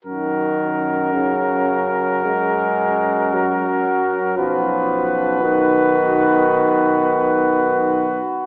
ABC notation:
X:1
M:12/8
L:1/8
Q:3/8=58
K:F#
V:1 name="Cornet"
A12 | B8- B3 z |]
V:2 name="Flugelhorn"
F12 | F12 |]
V:3 name="Euphonium"
C12- | C3 B,8 z |]
V:4 name="Trombone" clef=bass
D,3 C,3 G,3 F,3 | E,3 D,8 z |]
V:5 name="Tuba" clef=bass
F,,12 | B,,,8- B,,,3 z |]